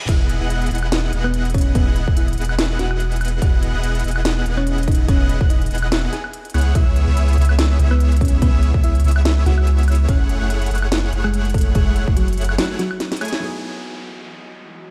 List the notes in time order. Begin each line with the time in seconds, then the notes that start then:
0.08 E1 B3 E4 G#4 D#5 E5 F#5 F#6, kick, closed hi-hat, crash
0.29 closed hi-hat
0.41 E1 B3 E4 G#4 D#5 F#5 F#6
0.50 closed hi-hat
0.62 closed hi-hat
0.66 closed hi-hat
0.71 E1 B3 E4 G#4 D#5 F#5 F#6, closed hi-hat
0.75 closed hi-hat
0.78 closed hi-hat
0.83 high woodblock
0.92 snare, closed hi-hat
1.13 E1 B3 E4 G#4 D#5 F#5 F#6, closed hi-hat
1.24 B3 B4, high woodblock
1.34 closed hi-hat
1.45 closed hi-hat
1.50 closed hi-hat
1.54 C#4 C#5, kick, closed hi-hat
1.58 closed hi-hat
1.61 closed hi-hat
1.75 E1 B3 E4 G#4 B4 D#5 F#5 F#6, kick, closed hi-hat
1.96 closed hi-hat
2.07 E1 B3 G#4 D#5 F#5 F#6, kick
2.17 E4 E5, closed hi-hat
2.28 closed hi-hat
2.33 closed hi-hat
2.38 E1 B3 E4 G#4 D#5 F#5 F#6, closed hi-hat
2.42 closed hi-hat
2.45 closed hi-hat
2.49 high woodblock
2.59 E4 E5, snare, closed hi-hat
2.79 E1 B3 E4 F#4 G#4 D#5 F#5 F#6, snare, closed hi-hat
2.91 high woodblock
3.00 closed hi-hat
3.12 closed hi-hat
3.16 closed hi-hat
3.21 closed hi-hat, high woodblock
3.25 closed hi-hat
3.28 closed hi-hat
3.42 E1 B3 E4 F#4 G#4 D#5 F#5 F#6, kick, closed hi-hat
3.63 closed hi-hat
3.74 E1 B3 E4 G#4 D#5 F#5 F#6
3.83 closed hi-hat
3.95 closed hi-hat
4.00 closed hi-hat
4.04 E1 B3 E4 G#4 D#5 F#5 F#6, closed hi-hat
4.08 closed hi-hat
4.11 closed hi-hat
4.16 high woodblock
4.25 snare, closed hi-hat
4.46 E1 B3 E4 G#4 D#5 F#5 F#6, closed hi-hat
4.57 C#4 C#5, high woodblock
4.67 closed hi-hat
4.78 closed hi-hat
4.83 closed hi-hat
4.88 D#4 D#5, kick, closed hi-hat
4.92 closed hi-hat
4.95 closed hi-hat
5.08 E1 B3 C#4 E4 G#4 C#5 D#5 F#5 F#6, kick, closed hi-hat
5.29 closed hi-hat
5.41 E1 B3 E4 G#4 D#5 F#5 F#6, kick
5.50 D#4 D#5, closed hi-hat
5.62 closed hi-hat
5.66 closed hi-hat
5.71 E1 B3 E4 G#4 D#5 F#5 F#6, closed hi-hat
5.75 closed hi-hat
5.78 closed hi-hat
5.82 high woodblock
5.92 E4 E5, snare, closed hi-hat
6.13 G#4 G#5, snare, closed hi-hat
6.24 high woodblock
6.33 closed hi-hat
6.45 closed hi-hat
6.50 closed hi-hat
6.54 C#2 B3 E4 G#4 C#5 F#5 F#6, closed hi-hat, high woodblock
6.58 closed hi-hat
6.61 closed hi-hat
6.75 C#2 B3 E4 G#4 C#5 E5 E6, kick, closed hi-hat
6.96 closed hi-hat
7.07 C#2 B3 E4 G#4 C#5 E5 E6
7.17 closed hi-hat
7.28 closed hi-hat
7.33 closed hi-hat
7.38 C#2 B3 E4 G#4 C#5 E5 E6, closed hi-hat
7.42 closed hi-hat
7.45 closed hi-hat
7.49 high woodblock
7.59 snare, closed hi-hat
7.79 C#2 B3 E4 G#4 C#5 E5 E6, closed hi-hat
7.91 B3 B4, high woodblock
8.00 closed hi-hat
8.12 closed hi-hat
8.17 closed hi-hat
8.21 C#4 C#5, kick, closed hi-hat
8.25 closed hi-hat
8.28 closed hi-hat
8.42 C#2 B3 E4 G#4 B4 C#5 E5 E6, kick, closed hi-hat
8.63 closed hi-hat
8.74 C#2 B3 E4 G#4 C#5 E5 E6, kick
8.84 E4 E5, closed hi-hat
8.95 closed hi-hat
9.00 closed hi-hat
9.04 C#2 B3 E4 G#4 C#5 E5 E6, closed hi-hat
9.08 closed hi-hat
9.11 closed hi-hat
9.16 high woodblock
9.25 E4 E5, snare, closed hi-hat
9.46 C#2 B3 E4 F#4 G#4 C#5 E5 F#5 E6, snare, closed hi-hat
9.58 high woodblock
9.67 closed hi-hat
9.79 closed hi-hat
9.83 closed hi-hat
9.88 closed hi-hat, high woodblock
9.92 closed hi-hat
9.95 closed hi-hat
10.09 F#1 A3 C#4 E4 G#4 C#5 F#5 F#6, kick, closed hi-hat
10.29 closed hi-hat
10.41 F#1 A3 E4 G#4 C#5 F#5 F#6
10.50 closed hi-hat
10.62 closed hi-hat
10.66 closed hi-hat
10.71 F#1 A3 E4 G#4 C#5 F#5 F#6, closed hi-hat
10.75 closed hi-hat
10.78 closed hi-hat
10.82 high woodblock
10.92 snare, closed hi-hat
11.13 F#1 A3 E4 G#4 C#5 F#5 F#6, closed hi-hat
11.24 G#3 G#4, high woodblock
11.34 closed hi-hat
11.45 closed hi-hat
11.50 closed hi-hat
11.54 A3 A4, kick, closed hi-hat
11.58 closed hi-hat
11.61 closed hi-hat
11.75 F#1 G#3 A3 E4 G#4 C#5 F#5 F#6, kick, closed hi-hat
11.96 closed hi-hat
12.08 F#1 A3 E4 G#4 F#6, kick
12.17 F#3 F#4, closed hi-hat
12.28 closed hi-hat
12.33 closed hi-hat
12.38 F#1 A3 E4 G#4 C#5 F#5 F#6, closed hi-hat
12.41 closed hi-hat
12.44 closed hi-hat
12.49 high woodblock
12.58 F#3 F#4, snare, closed hi-hat
12.79 F#3 F#4, snare, closed hi-hat
12.91 high woodblock
13.00 snare, closed hi-hat
13.12 snare, closed hi-hat
13.17 closed hi-hat
13.21 A3 E4 G#4 C#5 G#5 G#6, closed hi-hat, high woodblock
13.25 closed hi-hat
13.28 closed hi-hat
13.33 snare
13.40 E3 F#3 G#3 B3 D#4 E4 F#4 D#5, downlifter
13.44 G#4